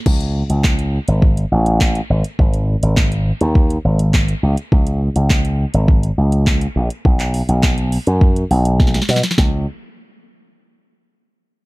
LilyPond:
<<
  \new Staff \with { instrumentName = "Slap bass" } { \clef bass \time 4/4 \key b \mixolydian \tempo 4 = 103 cis,8. cis,4 gis,,8. a,,4 gis,,16 r16 | gis,,8. gis,,4 dis,8. gis,,4 cis,16 r16 | cis,8. cis,4 gis,,8. cis,4 ais,,16 r16 | b,,8. b,,4 fis,8. b,,4 b,16 r16 |
cis,8 r2. r8 | }
  \new DrumStaff \with { instrumentName = "Drums" } \drummode { \time 4/4 <cymc bd>16 hh8 hh16 <hc bd sn>16 hh8 hh16 bd16 hh8 hh16 <hc bd sn>16 hh8 hh16 | bd16 hh8 hh16 <hc bd sn>16 hh8 hh16 bd16 hh8 hh16 <hc bd sn>16 hh8 hh16 | bd16 hh8 hh16 <hc bd sn>16 hh8 hh16 bd16 hh8 hh16 <hc bd sn>16 hh8 hh16 | bd16 <hc hh>16 hho16 hh16 <hc bd sn>16 hh16 hho16 hh16 bd16 hh16 hho16 hh16 <bd sn>32 sn32 <hh sn>32 sn32 <hho sn>32 sn32 <hh sn>32 sn32 |
<bd sn>4 r4 r4 r4 | }
>>